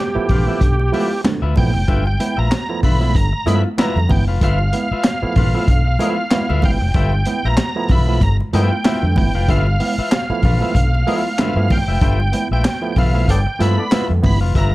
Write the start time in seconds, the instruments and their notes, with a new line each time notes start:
Already playing: tonewheel organ G4
0.00 muted conga
0.15 tine electric piano F3 A3 B3 E4, muted fingered electric bass stroke, muted clean electric guitar stroke
0.29 fingered electric bass A#1, tine electric piano G2 D3, clean electric guitar F4 B4 F5, kick, open hi-hat, low conga
0.47 tine electric piano F3 A3 B3 E4, clean electric guitar F4 B4 E5, high conga
0.61 fingered electric bass B1, tine electric piano G2 D3, muted clean electric guitar stroke, kick, closed hi-hat
0.79 muted clean electric guitar stroke, muted conga
0.92 tine electric piano F3 A3 B3 E4, clean electric guitar F4 B4 E5, open hi-hat, high conga
1.11 tine electric piano B3 E4, muted clean electric guitar stroke
1.24 tine electric piano G2 D3, muted clean electric guitar stroke, snare, clap, closed hi-hat, muted conga, high conga
1.42 fingered electric bass D2, clean electric guitar F4 B4 E5
1.56 fingered electric bass A#1, tine electric piano F3 A3 B3 E4, tonewheel organ G5, muted clean electric guitar stroke, kick, open hi-hat, high conga, low conga
1.74 fingered electric bass F1, tine electric piano B3 E4, muted clean electric guitar stroke
1.88 fingered electric bass G1, tine electric piano G2 D3, clean electric guitar F4 B4 E5, kick, closed hi-hat, muted conga
2.05 tonewheel organ G5, muted clean electric guitar stroke, muted conga
2.20 tine electric piano B3 E4, muted clean electric guitar stroke, closed hi-hat, high conga
2.37 fingered electric bass A#1, clean electric guitar F4 B4 E5, tonewheel organ A#5
2.52 snare, clap, closed hi-hat
2.69 tine electric piano F3 A3 B3 E4, muted clean electric guitar stroke
2.83 fingered electric bass B1, tine electric piano G2 D3, clean electric guitar F4 B4 E5, tonewheel organ B5, kick, open hi-hat, low conga
3.00 tine electric piano F3 A3 B3 E4, clean electric guitar F4 B4 E5, high conga
3.14 fingered electric bass G1, tine electric piano G2 D3, tonewheel organ A#5, muted clean electric guitar stroke, kick, closed hi-hat, muted conga
3.33 muted clean electric guitar stroke
3.46 fingered electric bass G2, tine electric piano F3 A3 B3 E4, clean electric guitar F4 B4 E5, tonewheel organ B5, closed hi-hat, high conga
3.64 tine electric piano B3 E4, muted clean electric guitar stroke
3.78 tine electric piano B3 E4, clean electric guitar F4 B4 E5, tonewheel organ A#5, snare, clap, closed hi-hat, high conga
3.95 fingered electric bass F2, tine electric piano G2 D3, muted conga
4.09 fingered electric bass G1, tine electric piano B3 E4, tonewheel organ G5, muted clean electric guitar stroke, kick, open hi-hat, high conga, low conga
4.27 fingered electric bass F1, clean electric guitar F4 B4 F5
4.41 fingered electric bass G1, tine electric piano G2 D3, clean electric guitar F4 B4 E5, tonewheel organ F5, kick, closed hi-hat, muted conga
4.59 muted clean electric guitar stroke, muted conga
4.73 tine electric piano B3 E4, muted clean electric guitar stroke, closed hi-hat, high conga
4.91 clean electric guitar F4 B4 E5, muted fingered electric bass stroke
5.04 snare, clap, closed hi-hat
5.22 tine electric piano F3 A3 B3 E4, muted fingered electric bass stroke, muted clean electric guitar stroke, muted conga
5.36 fingered electric bass A#1, tine electric piano G2 D3, clean electric guitar F4 B4 F5, kick, open hi-hat, low conga
5.54 tine electric piano F3 A3 B3 E4, clean electric guitar F4 B4 E5, high conga
5.68 fingered electric bass B1, tine electric piano G2 D3, kick, closed hi-hat, muted conga
5.87 muted clean electric guitar stroke
5.99 tine electric piano F3 A3 B3 E4, clean electric guitar F4 B4 E5, closed hi-hat, high conga
6.18 tine electric piano B3 E4, muted clean electric guitar stroke
6.31 tine electric piano B3 E4, muted clean electric guitar stroke, snare, clap, closed hi-hat, muted conga, high conga
6.49 fingered electric bass D2, tine electric piano G2 D3, clean electric guitar F4 B4 E5, muted conga
6.62 fingered electric bass G1, tine electric piano B3 E4, tonewheel organ G5, muted clean electric guitar stroke, kick, open hi-hat, high conga, low conga
6.81 fingered electric bass F1, muted clean electric guitar stroke
6.94 fingered electric bass G1, tine electric piano G2 D3, clean electric guitar F4 B4 E5, kick, closed hi-hat, muted conga
7.12 muted clean electric guitar stroke, muted conga
7.25 tine electric piano B3 E4, muted clean electric guitar stroke, closed hi-hat, high conga
7.45 fingered electric bass A#1, clean electric guitar F4 B4 E5, tonewheel organ A#5
7.57 snare, clap, closed hi-hat, muted conga
7.76 tine electric piano F3 A3 B3 E4, muted clean electric guitar stroke
7.88 fingered electric bass B1, tine electric piano G2 D3, clean electric guitar F4 B4 E5, tonewheel organ B5, kick, open hi-hat, low conga
8.07 tine electric piano F3 A3 B3 E4, clean electric guitar F4 B4 E5, high conga
8.21 fingered electric bass G1, tine electric piano G2 D3, tonewheel organ A#5, muted clean electric guitar stroke, kick, closed hi-hat, muted conga
8.40 muted clean electric guitar stroke, muted conga
8.53 fingered electric bass G2, tine electric piano F3 A3 B3 E4, clean electric guitar F4 B4 E5, tonewheel organ G5, closed hi-hat, high conga
8.71 tine electric piano B3 E4, muted clean electric guitar stroke
8.84 tine electric piano B3 E4, clean electric guitar F4 B4 E5, snare, clap, closed hi-hat, muted conga, high conga
9.02 fingered electric bass F2, tine electric piano G2 D3
9.16 fingered electric bass G1, tine electric piano B3 E4, tonewheel organ G5, muted clean electric guitar stroke, kick, open hi-hat, high conga, low conga
9.35 fingered electric bass F1, clean electric guitar F4 B4 F5
9.48 fingered electric bass G1, tine electric piano G2 D3, clean electric guitar F4 B4 E5, tonewheel organ F5, kick, closed hi-hat
9.67 muted clean electric guitar stroke, muted conga
9.80 tine electric piano B3 E4, muted clean electric guitar stroke, open hi-hat, high conga
9.98 clean electric guitar F4 B4 E5, muted fingered electric bass stroke
10.12 snare, clap, closed hi-hat
10.30 tine electric piano F3 A3 B3 E4, muted fingered electric bass stroke, muted clean electric guitar stroke
10.43 fingered electric bass A#1, tine electric piano G2 D3, clean electric guitar F4 B4 F5, kick, open hi-hat, low conga
10.60 tine electric piano F3 A3 B3 E4, clean electric guitar F4 B4 E5, high conga
10.75 fingered electric bass B1, tine electric piano G2 D3, kick, closed hi-hat, muted conga
10.94 muted clean electric guitar stroke, muted conga
11.07 tine electric piano F3 A3 B3 E4, clean electric guitar F4 B4 E5, open hi-hat, high conga
11.24 tine electric piano B3 E4, muted clean electric guitar stroke
11.38 tine electric piano G2 D3, clean electric guitar F4 B4 E5, snare, clap, closed hi-hat, muted conga, high conga
11.56 fingered electric bass G2, tine electric piano F3 A3 B3 E4
11.70 tine electric piano B3 E4, tonewheel organ G5, muted clean electric guitar stroke, kick, open hi-hat, high conga, low conga
11.88 fingered electric bass F1, clean electric guitar F4 B4 E5
12.01 fingered electric bass G1, tine electric piano G2 D3, clean electric guitar F4 B4 E5, kick, closed hi-hat
12.20 muted clean electric guitar stroke, muted conga
12.32 tine electric piano B3 E4, muted clean electric guitar stroke, closed hi-hat, high conga
12.51 fingered electric bass A#1, clean electric guitar F4 B4 E5, tonewheel organ G5
12.65 muted clean electric guitar stroke, snare, clap, closed hi-hat, muted conga
12.81 tine electric piano F3 A3 B3 E4, muted clean electric guitar stroke
12.92 tine electric piano G2 D3, tonewheel organ G5, open hi-hat
12.96 fingered electric bass B1, clean electric guitar F4 B4 E5, tonewheel organ F5, kick, low conga
13.13 tine electric piano F3 A3 B3 E4, clean electric guitar F4 B4 E5, high conga
13.28 fingered electric bass G1, tine electric piano G2 D3, horn section B3 A4 D5, tonewheel organ G5, muted clean electric guitar stroke, kick, closed hi-hat, muted conga
13.47 muted clean electric guitar stroke
13.59 fingered electric bass G2, tine electric piano F3 A3 B3 E4, clean electric guitar F4 B4 E5, tonewheel organ B5, closed hi-hat, high conga
13.77 horn section B3 A4 D5, tine electric piano B3 E4, muted clean electric guitar stroke
13.91 tine electric piano B3 E4, clean electric guitar F4 B4 E5, tonewheel organ B5, snare, clap, closed hi-hat, muted conga, high conga
14.09 fingered electric bass F2, tine electric piano G2 D3, muted conga
14.22 fingered electric bass G1, tine electric piano B3 E4, tonewheel organ B5, muted clean electric guitar stroke, kick, open hi-hat, high conga, low conga
14.41 fingered electric bass F1, clean electric guitar F4 B4 F5
14.55 fingered electric bass G1, tine electric piano G2 D3, clean electric guitar F4 B4 E5, tonewheel organ A#5, kick, closed hi-hat